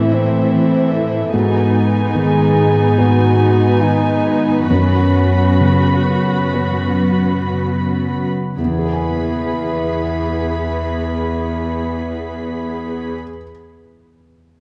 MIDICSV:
0, 0, Header, 1, 7, 480
1, 0, Start_track
1, 0, Key_signature, 4, "major"
1, 0, Tempo, 782269
1, 814, Time_signature, 4, 2, 24, 8
1, 814, Tempo, 827586
1, 2254, Tempo, 887574
1, 3214, Tempo, 934579
1, 3694, Tempo, 1000000
1, 4174, Tempo, 1052632
1, 7403, End_track
2, 0, Start_track
2, 0, Title_t, "Violin section"
2, 0, Program_c, 0, 48
2, 0, Note_on_c, 0, 72, 46
2, 0, Note_on_c, 0, 76, 43
2, 786, Note_off_c, 0, 72, 0
2, 790, Note_off_c, 0, 76, 0
2, 823, Note_on_c, 0, 71, 46
2, 824, Note_on_c, 0, 80, 51
2, 2710, Note_off_c, 0, 80, 0
2, 2729, Note_on_c, 0, 83, 43
2, 4520, Note_off_c, 0, 83, 0
2, 4541, Note_off_c, 0, 71, 0
2, 4656, Note_on_c, 0, 71, 40
2, 4657, Note_on_c, 0, 83, 38
2, 6738, Note_off_c, 0, 71, 0
2, 6739, Note_off_c, 0, 83, 0
2, 7403, End_track
3, 0, Start_track
3, 0, Title_t, "French horn"
3, 0, Program_c, 1, 60
3, 0, Note_on_c, 1, 64, 71
3, 91, Note_on_c, 1, 60, 61
3, 100, Note_off_c, 1, 64, 0
3, 569, Note_on_c, 1, 64, 58
3, 579, Note_off_c, 1, 60, 0
3, 817, Note_on_c, 1, 66, 68
3, 826, Note_off_c, 1, 64, 0
3, 1122, Note_off_c, 1, 66, 0
3, 1296, Note_on_c, 1, 68, 75
3, 1780, Note_on_c, 1, 66, 76
3, 1789, Note_off_c, 1, 68, 0
3, 2261, Note_on_c, 1, 63, 65
3, 2269, Note_off_c, 1, 66, 0
3, 2730, Note_off_c, 1, 63, 0
3, 2736, Note_on_c, 1, 61, 66
3, 3441, Note_off_c, 1, 61, 0
3, 3459, Note_on_c, 1, 61, 55
3, 3925, Note_off_c, 1, 61, 0
3, 4660, Note_on_c, 1, 64, 47
3, 6742, Note_off_c, 1, 64, 0
3, 7403, End_track
4, 0, Start_track
4, 0, Title_t, "Viola section"
4, 0, Program_c, 2, 48
4, 0, Note_on_c, 2, 52, 44
4, 0, Note_on_c, 2, 64, 44
4, 789, Note_off_c, 2, 64, 0
4, 790, Note_off_c, 2, 52, 0
4, 824, Note_on_c, 2, 63, 50
4, 825, Note_on_c, 2, 59, 48
4, 2710, Note_off_c, 2, 63, 0
4, 2734, Note_on_c, 2, 66, 44
4, 4541, Note_off_c, 2, 66, 0
4, 4542, Note_off_c, 2, 59, 0
4, 4654, Note_on_c, 2, 59, 35
4, 4658, Note_on_c, 2, 68, 32
4, 6736, Note_off_c, 2, 59, 0
4, 6740, Note_off_c, 2, 68, 0
4, 7403, End_track
5, 0, Start_track
5, 0, Title_t, "Felt piano"
5, 0, Program_c, 3, 0
5, 0, Control_c, 3, 64, 127
5, 0, Note_on_c, 3, 45, 43
5, 0, Note_on_c, 3, 52, 38
5, 0, Note_on_c, 3, 60, 38
5, 0, Note_on_c, 3, 69, 38
5, 0, Note_on_c, 3, 76, 39
5, 145, Note_off_c, 3, 52, 0
5, 791, Note_off_c, 3, 45, 0
5, 791, Note_off_c, 3, 60, 0
5, 792, Note_off_c, 3, 69, 0
5, 792, Note_off_c, 3, 76, 0
5, 819, Note_on_c, 3, 44, 48
5, 825, Control_c, 3, 64, 0
5, 918, Control_c, 3, 64, 127
5, 1293, Note_on_c, 3, 51, 37
5, 1772, Note_on_c, 3, 59, 39
5, 1773, Note_on_c, 3, 66, 37
5, 1774, Note_on_c, 3, 71, 39
5, 2060, Note_off_c, 3, 51, 0
5, 2708, Note_off_c, 3, 44, 0
5, 2709, Note_off_c, 3, 59, 0
5, 2710, Note_off_c, 3, 66, 0
5, 2710, Note_off_c, 3, 71, 0
5, 2737, Control_c, 3, 64, 0
5, 2738, Note_on_c, 3, 42, 43
5, 2840, Control_c, 3, 64, 127
5, 3226, Note_on_c, 3, 49, 34
5, 3700, Note_on_c, 3, 59, 30
5, 3703, Note_on_c, 3, 66, 32
5, 3703, Note_on_c, 3, 71, 34
5, 3984, Note_off_c, 3, 49, 0
5, 4643, Note_off_c, 3, 59, 0
5, 4644, Note_off_c, 3, 42, 0
5, 4644, Note_off_c, 3, 66, 0
5, 4644, Note_off_c, 3, 71, 0
5, 4657, Note_on_c, 3, 40, 30
5, 4669, Control_c, 3, 64, 0
5, 4690, Note_on_c, 3, 52, 33
5, 4720, Note_on_c, 3, 59, 33
5, 4753, Note_on_c, 3, 68, 29
5, 4778, Control_c, 3, 64, 127
5, 4783, Note_on_c, 3, 71, 31
5, 4818, Note_on_c, 3, 80, 31
5, 6739, Note_off_c, 3, 40, 0
5, 6772, Note_off_c, 3, 52, 0
5, 6803, Note_off_c, 3, 59, 0
5, 6835, Note_off_c, 3, 68, 0
5, 6865, Note_off_c, 3, 71, 0
5, 6900, Note_off_c, 3, 80, 0
5, 7403, End_track
6, 0, Start_track
6, 0, Title_t, "Harp"
6, 0, Program_c, 4, 46
6, 0, Note_on_c, 4, 45, 47
6, 0, Note_on_c, 4, 52, 43
6, 0, Note_on_c, 4, 60, 39
6, 0, Note_on_c, 4, 69, 42
6, 92, Note_off_c, 4, 60, 0
6, 100, Note_on_c, 4, 60, 39
6, 330, Note_off_c, 4, 52, 0
6, 338, Note_on_c, 4, 52, 35
6, 568, Note_off_c, 4, 69, 0
6, 575, Note_on_c, 4, 69, 37
6, 818, Note_on_c, 4, 44, 50
6, 833, Note_off_c, 4, 45, 0
6, 834, Note_off_c, 4, 69, 0
6, 835, Note_off_c, 4, 52, 0
6, 835, Note_off_c, 4, 60, 0
6, 1050, Note_on_c, 4, 59, 38
6, 1285, Note_on_c, 4, 51, 42
6, 1528, Note_on_c, 4, 66, 39
6, 1760, Note_off_c, 4, 51, 0
6, 1767, Note_on_c, 4, 51, 45
6, 2006, Note_off_c, 4, 59, 0
6, 2013, Note_on_c, 4, 59, 36
6, 2253, Note_off_c, 4, 51, 0
6, 2260, Note_on_c, 4, 51, 36
6, 2488, Note_off_c, 4, 66, 0
6, 2494, Note_on_c, 4, 66, 38
6, 2734, Note_on_c, 4, 42, 45
6, 2748, Note_off_c, 4, 44, 0
6, 2749, Note_off_c, 4, 51, 0
6, 2969, Note_off_c, 4, 59, 0
6, 2975, Note_on_c, 4, 59, 38
6, 3218, Note_on_c, 4, 49, 31
6, 3449, Note_off_c, 4, 66, 0
6, 3455, Note_on_c, 4, 66, 33
6, 3695, Note_off_c, 4, 49, 0
6, 3701, Note_on_c, 4, 49, 34
6, 3926, Note_off_c, 4, 59, 0
6, 3932, Note_on_c, 4, 59, 29
6, 4171, Note_off_c, 4, 49, 0
6, 4176, Note_on_c, 4, 49, 28
6, 4408, Note_off_c, 4, 66, 0
6, 4413, Note_on_c, 4, 66, 30
6, 4655, Note_on_c, 4, 40, 31
6, 4666, Note_off_c, 4, 42, 0
6, 4676, Note_off_c, 4, 66, 0
6, 4678, Note_off_c, 4, 49, 0
6, 4687, Note_on_c, 4, 52, 32
6, 4714, Note_off_c, 4, 59, 0
6, 4720, Note_on_c, 4, 59, 30
6, 4750, Note_on_c, 4, 68, 28
6, 4782, Note_on_c, 4, 71, 31
6, 4815, Note_on_c, 4, 80, 31
6, 6737, Note_off_c, 4, 40, 0
6, 6769, Note_off_c, 4, 52, 0
6, 6802, Note_off_c, 4, 59, 0
6, 6832, Note_off_c, 4, 68, 0
6, 6864, Note_off_c, 4, 71, 0
6, 6897, Note_off_c, 4, 80, 0
6, 7403, End_track
7, 0, Start_track
7, 0, Title_t, "Cello section"
7, 0, Program_c, 5, 48
7, 0, Note_on_c, 5, 45, 52
7, 789, Note_off_c, 5, 45, 0
7, 816, Note_on_c, 5, 44, 57
7, 2706, Note_off_c, 5, 44, 0
7, 2725, Note_on_c, 5, 42, 53
7, 4519, Note_off_c, 5, 42, 0
7, 4652, Note_on_c, 5, 40, 45
7, 6734, Note_off_c, 5, 40, 0
7, 7403, End_track
0, 0, End_of_file